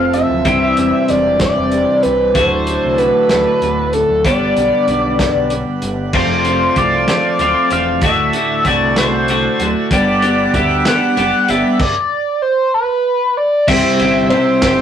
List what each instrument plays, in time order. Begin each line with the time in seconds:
Already playing: picked electric bass F1, clean electric guitar F2 C3 F3 A3 C4 F4, harmonium F3 A3 C4 A4, analog synth lead F5
0.13 analog synth lead E5, closed hi-hat
0.29 picked electric bass D1
0.45 picked electric bass C2, clean electric guitar C3 G3 C4 E4 G4 C5, harmonium E3 D4 G4, kick, closed hi-hat
0.77 picked electric bass E1, closed hi-hat
1.08 picked electric bass E1, analog synth lead D5, closed hi-hat
1.40 analog synth lead D5, kick, snare, closed hi-hat
1.57 picked electric bass E1
1.72 closed hi-hat
2.03 picked electric bass C2, analog synth lead B4, closed hi-hat
2.34 picked electric bass D1, clean electric guitar D2 A2 D3 A3 F#4, harmonium F#3 A3 A4, analog synth lead C5, kick, closed hi-hat
2.67 closed hi-hat
2.84 picked electric bass C2
2.98 analog synth lead B4, closed hi-hat
3.29 picked electric bass D1, snare, closed hi-hat
3.62 picked electric bass D1, closed hi-hat
3.93 analog synth lead A4, closed hi-hat
4.09 picked electric bass D1
4.25 picked electric bass G1, clean electric guitar G2 D3 G3 B3 D4 G4, harmonium G3 B3 D4 B4, analog synth lead D5, kick, closed hi-hat
4.56 picked electric bass B1, closed hi-hat
4.88 picked electric bass B1, closed hi-hat
5.19 kick, snare, closed hi-hat
5.35 picked electric bass B1
5.50 closed hi-hat
5.82 picked electric bass G1, closed hi-hat
6.13 picked electric bass F1, clean electric guitar F2 C3 F3 A3 C4 F4, harmonium F4 C5 D5 A5, analog synth lead C5, kick, crash
6.45 clean electric guitar F3 A3 C4 F4, closed hi-hat
6.76 picked electric bass C2, clean electric guitar F3 A3 C4 F4, analog synth lead D5, kick, closed hi-hat
7.08 clean electric guitar F3 A3 C4 F4, snare, closed hi-hat
7.39 picked electric bass D1, clean electric guitar F3 A3 C4 F4, closed hi-hat
7.70 picked electric bass E1, clean electric guitar F3 A3 C4 F4, analog synth lead F5, closed hi-hat
8.01 picked electric bass D1, clean electric guitar D2 A2 D3 A3 F#4, harmonium F#4 A4, analog synth lead E5, kick, closed hi-hat
8.33 clean electric guitar D3 A3 F#4, closed hi-hat
8.65 picked electric bass C2, clean electric guitar A2 D3 A3 F#4, analog synth lead D5, kick, closed hi-hat
8.96 clean electric guitar D3 A3 F#4, analog synth lead C5, snare, closed hi-hat
9.28 clean electric guitar A2 D3 A3 F#4, closed hi-hat
9.60 picked electric bass D1, clean electric guitar D3 A3 F#4, closed hi-hat
9.91 picked electric bass G1, clean electric guitar G2 D3 G3 B3 D4 G4, harmonium G4 D5 F#5 B5, analog synth lead D5, kick, closed hi-hat
10.22 clean electric guitar G3 B3 D4 G4, closed hi-hat
10.54 picked electric bass D2, clean electric guitar G3 B3 D4 G4, analog synth lead E5, kick, closed hi-hat
10.85 clean electric guitar G3 B3 D4 G4, analog synth lead F#5, snare, closed hi-hat
11.17 picked electric bass F#1, clean electric guitar G3 B3 D4 G4, analog synth lead F#5, closed hi-hat
11.48 picked electric bass G1, clean electric guitar G3 B3 D4 G4, analog synth lead E5, closed hi-hat
11.80 analog synth lead D5, kick, crash
12.42 analog synth lead C5
12.74 analog synth lead B4
13.37 analog synth lead D5
13.68 picked electric bass C2, clean electric guitar C3 G3 C4 E4 G4 C5, harmonium C4 G4 E5 G5, analog synth lead E5, kick, crash
13.99 picked electric bass G1, clean electric guitar C4 E4 G4 C5, ride
14.30 picked electric bass C3, clean electric guitar C4 E4 G4 C5, analog synth lead C5, ride
14.61 picked electric bass G1, clean electric guitar C4 E4 G4 C5, analog synth lead C5, kick, snare, ride